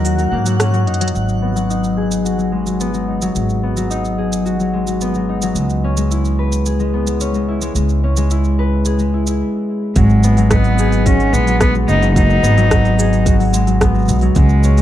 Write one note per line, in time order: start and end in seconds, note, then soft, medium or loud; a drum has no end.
0.00 0.31 D#2 medium
0.00 0.18 F#3 loud
0.00 0.59 C#4 loud
0.00 0.86 D#4 medium
0.00 0.12 G#4 medium
0.00 1.48 A#4 loud
0.00 1.16 F#5 medium
0.05 2.25 F#4 medium
0.05 open hi-hat medium
0.05 cabasa medium
0.19 0.45 F#3 medium
0.19 open hi-hat soft
0.19 cabasa soft
0.32 0.88 G#2 medium
0.32 1.48 A#3 medium
0.46 0.72 F#3 medium
0.46 open hi-hat soft
0.46 cabasa medium
0.60 3.49 C#4 medium
0.60 cross-stick loud
0.60 open hi-hat medium
0.60 cabasa medium
0.73 0.99 F#3 medium
0.73 open hi-hat soft
0.73 cabasa soft
0.87 1.10 F#2 medium
0.87 1.69 D#4 medium
0.87 closed hi-hat soft
0.94 closed hi-hat medium
1.01 1.13 F#3 loud
1.01 closed hi-hat medium
1.08 closed hi-hat medium
1.14 3.32 G#1 medium
1.14 1.54 F#3 medium
1.14 cabasa soft
1.29 cabasa soft
1.42 2.80 B3 medium
1.55 2.37 F#3 medium
1.55 cabasa medium
1.70 3.07 D#4 medium
1.70 cabasa soft
1.84 cabasa soft
1.97 4.18 G#4 medium
2.11 cabasa medium
2.25 4.45 F#4 medium
2.25 cabasa soft
2.38 2.65 F#3 medium
2.38 cabasa soft
2.52 4.72 G#3 medium
2.66 2.93 F#3 medium
2.66 cabasa medium
2.80 3.63 B3 medium
2.80 cabasa soft
2.94 3.21 F#3 medium
2.94 cabasa soft
3.08 3.90 D#4 medium
3.22 3.35 F#3 medium
3.22 cabasa medium
3.35 5.53 G#1 medium
3.35 3.76 F#3 medium
3.35 cabasa soft
3.49 cabasa soft
3.63 5.01 B3 medium
3.77 4.59 F#3 medium
3.77 cabasa medium
3.90 5.29 D#4 medium
3.90 cabasa soft
4.05 cabasa soft
4.18 6.45 G#4 medium
4.32 cabasa medium
4.46 6.89 F#4 medium
4.46 cabasa soft
4.60 4.86 F#3 medium
4.60 cabasa soft
4.73 5.56 G#3 medium
4.87 5.14 F#3 medium
4.87 cabasa medium
5.01 6.93 B3 medium
5.01 cabasa soft
5.15 5.42 F#3 medium
5.15 cabasa soft
5.29 6.17 D#4 medium
5.42 5.60 F#3 medium
5.42 cabasa medium
5.55 7.73 C#2 medium
5.55 5.96 G#3 medium
5.55 cabasa medium
5.70 cabasa soft
5.84 7.20 C#4 medium
5.97 6.79 G#3 medium
5.97 cabasa medium
6.11 7.48 E4 medium
6.11 cabasa soft
6.25 cabasa soft
6.39 8.44 B4 medium
6.52 cabasa medium
6.66 8.86 G#4 medium
6.66 cabasa soft
6.80 7.06 G#3 medium
6.80 cabasa soft
6.94 10.04 B3 medium
7.07 7.34 G#3 medium
7.07 cabasa medium
7.21 8.03 C#4 medium
7.21 cabasa medium
7.34 7.60 G#3 medium
7.34 cabasa soft
7.48 8.31 E4 medium
7.61 7.75 G#3 medium
7.61 cabasa medium
7.75 9.40 C#2 medium
7.75 8.16 G#3 medium
7.75 cabasa medium
7.89 cabasa soft
8.04 10.93 C#4 medium
8.17 8.98 G#3 medium
8.17 cabasa medium
8.30 9.13 E4 medium
8.30 cabasa medium
8.44 cabasa soft
8.59 10.64 B4 medium
8.85 10.79 G#4 medium
8.85 cabasa medium
8.99 10.01 G#3 medium
8.99 cabasa soft
9.14 9.27 E4 medium
9.27 10.57 E4 medium
9.27 cabasa medium
9.96 11.29 G#1 loud
9.96 10.36 F#3 medium
9.96 10.52 G#3 loud
9.96 kick loud
9.96 open hi-hat medium
9.96 cabasa soft
10.10 cabasa soft
10.23 11.61 B3 loud
10.23 cabasa medium
10.37 11.19 F#3 loud
10.37 open hi-hat soft
10.37 cabasa soft
10.50 11.07 B3 medium
10.50 11.88 D#4 medium
10.50 kick loud
10.50 cross-stick loud
10.50 open hi-hat medium
10.50 cabasa soft
10.64 open hi-hat soft
10.64 cabasa soft
10.78 12.98 G#4 loud
10.78 cabasa medium
10.92 open hi-hat soft
10.92 cabasa soft
11.06 11.34 C#4 medium
11.06 13.25 F#4 medium
11.06 kick loud
11.06 open hi-hat medium
11.06 cabasa soft
11.20 11.47 F#3 medium
11.20 open hi-hat soft
11.20 cabasa soft
11.33 11.84 A#1 medium
11.33 13.52 G#3 loud
11.33 11.60 B3 loud
11.33 cabasa medium
11.47 11.74 F#3 medium
11.47 open hi-hat soft
11.47 cabasa soft
11.60 11.73 B3 loud
11.60 12.43 B3 loud
11.60 kick loud
11.60 cross-stick loud
11.60 open hi-hat medium
11.60 cabasa soft
11.75 12.01 F#3 medium
11.75 cabasa soft
11.88 12.39 F#1 medium
11.88 12.14 D#4 loud
11.88 12.70 D#4 medium
11.88 cabasa medium
12.02 12.15 F#3 medium
12.02 open hi-hat soft
12.02 cabasa soft
12.16 12.56 F#3 medium
12.16 13.22 D#4 loud
12.16 kick loud
12.16 open hi-hat medium
12.16 cabasa soft
12.30 cross-stick soft
12.30 cabasa soft
12.43 14.04 G#1 medium
12.43 13.80 B3 loud
12.43 cabasa medium
12.57 13.38 F#3 loud
12.57 open hi-hat soft
12.57 cabasa soft
12.70 14.08 D#4 medium
12.70 kick loud
12.70 cross-stick loud
12.70 open hi-hat medium
12.70 cabasa soft
12.85 open hi-hat soft
12.85 cabasa soft
12.99 14.82 G#4 loud
12.99 cabasa medium
13.13 open hi-hat soft
13.13 cabasa soft
13.26 14.82 F#4 medium
13.26 kick loud
13.26 open hi-hat medium
13.26 cabasa soft
13.39 13.65 F#3 medium
13.39 open hi-hat soft
13.39 cabasa soft
13.42 open hi-hat soft
13.45 open hi-hat soft
13.47 open hi-hat soft
13.49 open hi-hat soft
13.51 14.35 G#3 loud
13.51 open hi-hat soft
13.51 cabasa medium
13.67 13.93 F#3 medium
13.67 open hi-hat soft
13.67 cabasa soft
13.81 14.82 B3 loud
13.81 kick loud
13.81 cross-stick loud
13.81 open hi-hat medium
13.81 cabasa soft
13.94 14.21 F#3 medium
13.94 cabasa soft
13.99 cabasa soft
14.01 cabasa soft
14.05 14.31 B1 medium
14.05 cabasa soft
14.08 14.82 D#4 medium
14.08 cabasa medium
14.12 cabasa soft
14.19 14.41 F#3 medium
14.19 open hi-hat soft
14.19 cabasa soft
14.35 14.82 C#2 loud
14.35 14.82 G#3 medium
14.35 14.77 G#3 medium
14.35 kick loud
14.35 open hi-hat medium
14.35 cabasa soft
14.49 cabasa soft
14.63 14.82 C#4 loud
14.63 cabasa medium
14.77 14.82 G#3 loud
14.77 open hi-hat soft
14.77 cabasa soft